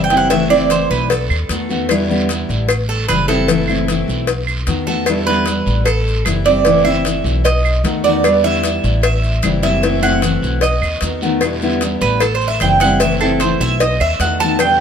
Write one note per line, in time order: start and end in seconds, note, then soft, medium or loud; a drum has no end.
0.00 0.84 F#1 medium
0.00 0.10 E3 soft
0.00 0.10 G3 medium
0.00 0.11 C4 medium
0.00 0.17 G5 medium
0.10 0.31 G3 medium
0.10 0.31 C4 medium
0.10 0.30 E4 medium
0.10 cowbell medium
0.10 short guiro medium
0.10 maracas soft
0.17 0.30 F#5 medium
0.30 0.50 E3 medium
0.30 0.50 A3 medium
0.30 0.49 C4 medium
0.30 0.48 E4 medium
0.30 0.50 E5 medium
0.30 cowbell loud
0.30 long guiro medium
0.30 maracas medium
0.50 0.69 A3 medium
0.50 0.70 C4 medium
0.50 0.69 E4 medium
0.50 0.70 D5 medium
0.50 claves medium
0.50 maracas soft
0.69 1.09 E3 medium
0.69 1.09 A3 soft
0.69 1.10 C4 medium
0.69 1.10 E4 medium
0.69 0.90 C5 medium
0.69 cowbell medium
0.69 short guiro medium
0.69 maracas medium
0.90 1.27 B1 medium
0.90 1.10 B4 medium
0.90 short guiro medium
0.90 maracas soft
1.09 1.86 A4 medium
1.09 muted steel-string acoustic guitar stroke medium
1.09 cowbell loud
1.09 long guiro medium
1.09 maracas medium
1.30 1.48 D#2 medium
1.30 claves medium
1.30 maracas soft
1.49 2.43 E2 medium
1.49 1.69 D#3 soft
1.49 1.69 A3 medium
1.49 1.69 B3 medium
1.49 1.68 F#4 medium
1.49 cowbell medium
1.49 short guiro medium
1.49 maracas medium
1.69 1.90 D#3 medium
1.69 1.89 A3 medium
1.69 1.89 B3 medium
1.69 1.88 F#4 medium
1.69 short guiro medium
1.69 maracas soft
1.89 2.09 B2 medium
1.89 2.09 D3 medium
1.89 2.09 G3 medium
1.89 2.09 B3 medium
1.89 2.08 E4 medium
1.89 cowbell loud
1.89 long guiro medium
1.89 claves medium
1.89 maracas medium
2.09 2.29 D3 medium
2.09 2.29 G3 medium
2.09 2.29 B3 medium
2.09 2.28 E4 medium
2.09 maracas soft
2.29 2.68 D3 medium
2.29 2.68 G3 medium
2.29 2.69 B3 medium
2.29 2.69 E4 medium
2.29 cowbell medium
2.29 short guiro medium
2.29 maracas medium
2.49 3.05 A1 loud
2.49 short guiro medium
2.49 maracas soft
2.69 muted steel-string acoustic guitar stroke medium
2.69 cowbell loud
2.69 long guiro medium
2.69 claves medium
2.69 maracas medium
2.89 3.08 A4 medium
2.89 maracas soft
3.08 4.02 F#1 medium
3.08 3.28 E3 soft
3.08 3.28 G3 medium
3.08 3.28 C4 medium
3.08 3.27 E4 medium
3.08 3.28 B4 loud
3.08 cowbell medium
3.08 short guiro medium
3.08 claves medium
3.08 maracas medium
3.28 3.48 G3 medium
3.28 3.48 C4 medium
3.28 3.47 E4 medium
3.28 3.84 A4 medium
3.28 cowbell medium
3.28 short guiro medium
3.28 maracas soft
3.48 3.67 E3 medium
3.48 3.67 A3 medium
3.48 3.68 C4 medium
3.48 3.67 E4 medium
3.48 cowbell loud
3.48 long guiro medium
3.48 maracas medium
3.68 3.88 A3 medium
3.68 3.88 C4 medium
3.68 3.87 E4 medium
3.68 claves medium
3.68 maracas soft
3.88 4.27 E3 soft
3.88 4.27 A3 medium
3.88 4.28 C4 medium
3.88 4.28 E4 medium
3.88 cowbell medium
3.88 short guiro medium
3.88 maracas medium
4.08 4.63 B1 medium
4.08 short guiro medium
4.08 maracas soft
4.27 muted steel-string acoustic guitar stroke medium
4.27 cowbell loud
4.27 long guiro medium
4.27 maracas medium
4.47 claves medium
4.47 maracas soft
4.67 5.60 E2 medium
4.67 4.86 D#3 medium
4.67 4.86 A3 soft
4.67 4.86 B3 medium
4.67 4.86 F#4 medium
4.67 cowbell medium
4.67 short guiro medium
4.67 maracas medium
4.87 5.07 D#3 medium
4.87 5.07 A3 medium
4.87 5.06 B3 medium
4.87 5.06 F#4 medium
4.87 5.24 A4 medium
4.87 short guiro medium
4.87 maracas soft
5.06 5.26 B2 medium
5.06 5.27 D3 medium
5.06 5.27 G3 medium
5.06 5.26 B3 medium
5.06 5.26 E4 medium
5.06 cowbell loud
5.06 long guiro medium
5.06 claves medium
5.06 maracas medium
5.27 5.46 D3 medium
5.27 5.46 G3 medium
5.27 5.46 B3 medium
5.27 5.46 E4 medium
5.27 5.82 B4 loud
5.27 maracas soft
5.46 5.86 D3 soft
5.46 5.85 G3 medium
5.46 5.87 B3 medium
5.46 cowbell medium
5.46 short guiro medium
5.46 maracas medium
5.50 5.85 E4 medium
5.66 6.22 A1 medium
5.66 short guiro medium
5.66 maracas soft
5.85 6.23 A4 medium
5.85 muted steel-string acoustic guitar stroke medium
5.85 cowbell loud
5.85 long guiro medium
5.85 claves medium
5.85 maracas medium
6.08 maracas soft
6.25 7.19 F#1 medium
6.25 6.44 E3 medium
6.25 6.45 G3 medium
6.25 6.45 C4 medium
6.25 6.45 E4 medium
6.25 cowbell medium
6.25 short guiro medium
6.25 claves medium
6.25 maracas medium
6.45 6.66 G3 medium
6.45 6.65 C4 medium
6.45 6.65 E4 medium
6.45 6.83 D5 medium
6.45 cowbell medium
6.45 short guiro medium
6.45 maracas soft
6.64 6.84 E3 medium
6.64 6.85 A3 medium
6.64 6.84 C4 medium
6.64 6.83 E4 medium
6.64 cowbell loud
6.64 long guiro medium
6.64 maracas medium
6.84 7.04 A3 medium
6.84 7.04 C4 medium
6.84 7.04 E4 medium
6.84 7.40 E5 medium
6.84 claves medium
6.84 maracas soft
7.04 7.44 E3 soft
7.04 7.43 A3 medium
7.04 7.45 C4 medium
7.04 7.45 E4 medium
7.04 cowbell medium
7.04 short guiro medium
7.04 maracas medium
7.24 7.80 B1 medium
7.24 short guiro medium
7.24 maracas soft
7.44 7.82 D#5 medium
7.44 muted steel-string acoustic guitar stroke medium
7.44 cowbell loud
7.44 long guiro medium
7.44 maracas medium
7.65 claves medium
7.65 maracas soft
7.84 8.77 E2 medium
7.84 8.03 D#3 medium
7.84 8.03 A3 medium
7.84 8.03 B3 medium
7.84 8.03 F#4 medium
7.84 cowbell medium
7.84 short guiro medium
7.84 maracas medium
8.04 8.24 D#3 medium
8.04 8.24 A3 medium
8.04 8.23 B3 medium
8.04 8.23 F#4 medium
8.04 8.41 D5 medium
8.04 short guiro medium
8.04 maracas soft
8.24 8.43 B2 medium
8.24 8.44 D3 medium
8.24 8.43 G3 medium
8.24 8.43 B3 medium
8.24 8.42 E4 medium
8.24 cowbell loud
8.24 long guiro medium
8.24 claves medium
8.24 maracas medium
8.43 8.62 D3 medium
8.43 8.63 G3 medium
8.43 8.63 B3 medium
8.43 8.63 E4 medium
8.43 9.00 E5 medium
8.43 maracas soft
8.64 9.01 D3 soft
8.64 9.01 G3 soft
8.64 9.02 B3 soft
8.64 9.02 E4 medium
8.64 cowbell medium
8.64 short guiro medium
8.64 maracas medium
8.84 9.39 A1 loud
8.84 short guiro medium
8.84 maracas soft
9.01 9.40 E5 medium
9.01 muted steel-string acoustic guitar stroke medium
9.01 cowbell loud
9.01 long guiro medium
9.01 claves medium
9.01 maracas medium
9.23 maracas soft
9.43 10.36 F#1 medium
9.43 9.62 E3 medium
9.43 9.62 G3 medium
9.43 9.62 C4 medium
9.43 9.61 E4 medium
9.43 cowbell medium
9.43 short guiro medium
9.43 claves medium
9.43 maracas medium
9.62 9.82 G3 medium
9.62 9.82 C4 medium
9.62 9.82 E4 medium
9.62 10.00 E5 medium
9.62 cowbell medium
9.62 short guiro medium
9.62 maracas soft
9.82 10.01 E3 medium
9.82 10.02 A3 medium
9.82 10.02 C4 medium
9.82 10.00 E4 medium
9.82 cowbell loud
9.82 long guiro medium
9.82 maracas medium
10.01 10.21 A3 medium
10.01 10.21 C4 medium
10.01 10.21 E4 medium
10.01 10.58 F#5 loud
10.01 claves medium
10.01 maracas soft
10.21 10.61 E3 medium
10.21 10.61 A3 soft
10.21 10.61 C4 soft
10.21 10.61 E4 medium
10.21 cowbell medium
10.21 short guiro medium
10.21 maracas medium
10.42 10.79 B1 medium
10.42 short guiro medium
10.42 maracas soft
10.61 10.99 D#5 medium
10.61 muted steel-string acoustic guitar stroke medium
10.61 cowbell loud
10.61 long guiro medium
10.61 maracas medium
10.81 11.00 D#2 medium
10.81 claves medium
10.81 maracas soft
11.01 11.95 E2 medium
11.01 11.21 D#3 soft
11.01 11.21 A3 medium
11.01 11.21 B3 medium
11.01 11.21 F#4 medium
11.01 cowbell medium
11.01 short guiro medium
11.01 maracas medium
11.21 11.42 D#3 medium
11.21 11.41 A3 medium
11.21 11.41 B3 medium
11.21 11.41 F#4 medium
11.21 short guiro medium
11.21 maracas soft
11.41 11.61 B2 medium
11.41 11.61 D3 medium
11.41 11.61 G3 medium
11.41 11.62 B3 medium
11.41 11.62 E4 medium
11.41 cowbell loud
11.41 long guiro medium
11.41 claves medium
11.41 maracas medium
11.62 11.81 D3 medium
11.62 11.82 G3 medium
11.62 11.81 B3 medium
11.62 11.81 E4 medium
11.62 maracas soft
11.81 12.21 D3 medium
11.81 12.20 G3 medium
11.81 12.21 B3 soft
11.81 12.21 E4 soft
11.81 cowbell medium
11.81 short guiro medium
11.81 maracas medium
12.01 12.57 A1 medium
12.01 12.21 B4 loud
12.01 short guiro medium
12.01 maracas soft
12.20 12.34 A4 medium
12.20 muted steel-string acoustic guitar stroke medium
12.20 cowbell loud
12.20 long guiro medium
12.20 claves medium
12.20 maracas medium
12.35 12.47 C5 medium
12.41 maracas soft
12.48 12.60 E5 medium
12.60 13.54 F#1 medium
12.60 12.80 E3 medium
12.60 12.81 G3 medium
12.60 12.81 C4 medium
12.60 12.80 E4 medium
12.60 12.81 G5 medium
12.60 cowbell medium
12.60 short guiro medium
12.60 claves medium
12.60 maracas medium
12.80 13.01 G3 medium
12.80 13.01 C4 medium
12.80 13.00 E4 medium
12.80 13.00 F#5 loud
12.80 cowbell medium
12.80 short guiro medium
12.80 maracas soft
13.00 13.20 E3 medium
13.00 13.21 A3 medium
13.00 13.21 C4 medium
13.00 13.20 E5 medium
13.00 cowbell loud
13.00 long guiro medium
13.00 maracas medium
13.04 13.21 E4 medium
13.21 13.41 A3 medium
13.21 13.41 C4 medium
13.21 13.40 E4 medium
13.21 13.40 A4 medium
13.21 claves medium
13.21 maracas soft
13.40 13.80 E3 soft
13.40 13.81 A3 medium
13.40 13.60 C5 medium
13.40 cowbell medium
13.40 short guiro medium
13.40 maracas medium
13.44 13.81 C4 medium
13.44 13.81 E4 medium
13.60 13.97 B1 medium
13.60 13.80 E5 loud
13.60 short guiro medium
13.60 maracas soft
13.80 14.00 D#5 medium
13.80 muted steel-string acoustic guitar stroke medium
13.80 cowbell loud
13.80 long guiro medium
13.80 maracas medium
14.00 14.19 D#2 medium
14.00 14.20 E5 medium
14.00 claves medium
14.00 maracas soft
14.20 14.80 E2 loud
14.20 14.40 D#3 soft
14.20 14.40 A3 medium
14.20 14.40 B3 medium
14.20 14.39 F#4 medium
14.20 14.40 F#5 medium
14.20 cowbell medium
14.20 short guiro medium
14.20 maracas medium
14.40 14.60 D#3 medium
14.40 14.60 A3 medium
14.40 14.60 B3 medium
14.40 14.59 F#4 medium
14.40 14.59 A5 loud
14.40 short guiro medium
14.40 maracas soft
14.59 14.79 B2 medium
14.59 14.79 D3 medium
14.59 14.79 G3 medium
14.59 14.79 B3 medium
14.59 14.78 E4 medium
14.59 14.79 G5 medium
14.59 cowbell loud
14.59 long guiro medium
14.59 claves medium
14.59 maracas medium